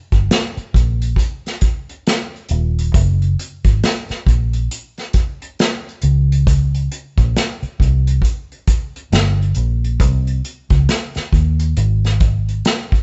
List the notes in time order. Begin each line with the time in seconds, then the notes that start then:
0.12 G1, kick, closed hi-hat
0.31 snare, closed hi-hat
0.57 muted fingered electric bass stroke, closed hi-hat
0.74 A#1, kick, closed hi-hat
1.02 closed hi-hat
1.16 kick, closed hi-hat
1.46 snare, closed hi-hat
1.61 kick, closed hi-hat
1.89 closed hi-hat
2.07 snare, closed hi-hat
2.36 closed hi-hat
2.49 D#1, closed hi-hat
2.79 closed hi-hat
2.94 F#1, kick, closed hi-hat
3.22 closed hi-hat
3.39 closed hi-hat
3.64 G#1, kick, closed hi-hat
3.84 snare, closed hi-hat
4.09 muted fingered electric bass stroke, snare, closed hi-hat
4.27 A#1, kick, closed hi-hat
4.53 closed hi-hat
4.71 closed hi-hat
4.98 snare, closed hi-hat
5.13 kick, closed hi-hat
5.42 closed hi-hat
5.59 snare, closed hi-hat
5.89 closed hi-hat
6.02 C#2, closed hi-hat
6.32 closed hi-hat
6.47 kick, closed hi-hat
6.74 closed hi-hat
6.92 closed hi-hat
7.18 A#1, kick, closed hi-hat
7.36 snare, closed hi-hat
7.63 muted fingered electric bass stroke, closed hi-hat
7.80 C2, kick, closed hi-hat
8.07 closed hi-hat
8.22 kick, closed hi-hat
8.52 closed hi-hat
8.67 kick, closed hi-hat
8.96 closed hi-hat
9.12 G1, snare, closed hi-hat
9.42 closed hi-hat
9.55 A#1, closed hi-hat
9.84 closed hi-hat
10.00 C2, kick, closed hi-hat
10.27 closed hi-hat
10.45 closed hi-hat
10.70 C#2, kick, closed hi-hat
10.89 snare, closed hi-hat
11.15 muted fingered electric bass stroke, snare, closed hi-hat
11.33 D#2, kick, closed hi-hat
11.59 closed hi-hat
11.77 G#1, closed hi-hat
12.04 snare, closed hi-hat
12.20 kick, closed hi-hat
12.49 closed hi-hat
12.65 snare, closed hi-hat
12.92 muted fingered electric bass stroke, kick, closed hi-hat